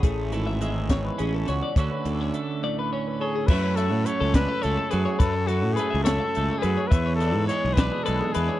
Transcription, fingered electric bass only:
\new Staff \with { instrumentName = "Fingered electric bass" } { \clef bass \time 6/8 \key fis \minor \tempo 4. = 70 a,,8 gis,,4. a,,8 cis,16 r16 | d,16 r16 d,8 r2 | fis,8. a,16 r16 cis,8 r16 cis,16 r16 fis,16 r16 | fis,8. a,16 r16 cis,8 r16 cis,16 r16 fis,16 r16 |
e,8. gis,16 r16 b,,8 r16 b,,16 r16 e,16 r16 | }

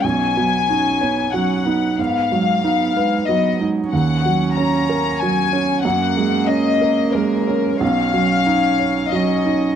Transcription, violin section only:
\new Staff \with { instrumentName = "Violin section" } { \time 3/4 \key b \lydian \tempo 4 = 92 gis''2 fis''4 | eis''2 dis''8 r8 | fis''4 ais''4 gis''4 | fis''4 dis''4 ais'4 |
eis''2 dis''4 | }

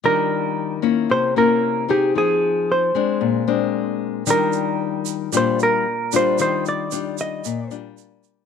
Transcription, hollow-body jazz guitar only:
\new Staff \with { instrumentName = "Hollow-body jazz guitar" } { \time 4/4 \key ees \major \tempo 4 = 114 bes'2 c''8 bes'4 g'8 | aes'4 c''2~ c''8 r8 | bes'2 c''8 bes'4 c''8 | c''8 d''4 ees''4 r4. | }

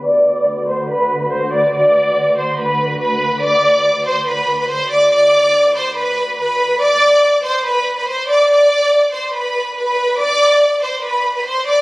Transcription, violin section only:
\new Staff \with { instrumentName = "Violin section" } { \time 4/4 \key b \phrygian \tempo 4 = 142 <d'' d'''>4. <c'' c'''>8 <b' b''>8. <b' b''>16 <c'' c'''>8 <d'' d'''>8 | <d'' d'''>4. <c'' c'''>8 <b' b''>4 <b' b''>4 | <d'' d'''>4. <c'' c'''>8 <b' b''>8. <b' b''>16 <c'' c'''>8 <d'' d'''>8 | <d'' d'''>4. <c'' c'''>8 <b' b''>4 <b' b''>4 |
<d'' d'''>4. <c'' c'''>8 <b' b''>8. <b' b''>16 <c'' c'''>8 <d'' d'''>8 | <d'' d'''>4. <c'' c'''>8 <b' b''>4 <b' b''>4 | <d'' d'''>4. <c'' c'''>8 <b' b''>8. <b' b''>16 <c'' c'''>8 <d'' d'''>8 | }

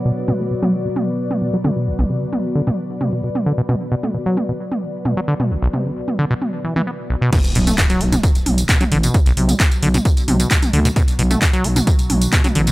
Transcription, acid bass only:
\new Staff \with { instrumentName = "Acid bass" } { \clef bass \time 4/4 \key b \minor \tempo 4 = 132 b,16 r16 b,16 a16 b,16 fis16 b16 b,16 r4 b,16 fis16 d16 b,16 | b,,16 b,,16 c16 d16 r8 d16 b,16 r8 c16 b,16 b,16 r16 d16 b,16 | b,16 r16 b,16 a16 b,16 fis16 b16 b,16 r4 b,16 fis16 d16 b,16 | b,,16 b,,16 c16 d16 r8 d16 b,16 r8 e16 e16 b16 r16 b,,16 b,16 |
b,16 r16 b,16 a16 b,16 fis16 b16 b,16 r4 b,16 fis16 d16 b,16 | b,,16 b,,16 c16 d16 r8 d16 b,16 r8 c16 b,16 b,16 r16 d16 b,16 | b,16 r16 b,16 a16 b,16 fis16 b16 b,16 r4 b,16 fis16 d16 b,16 | }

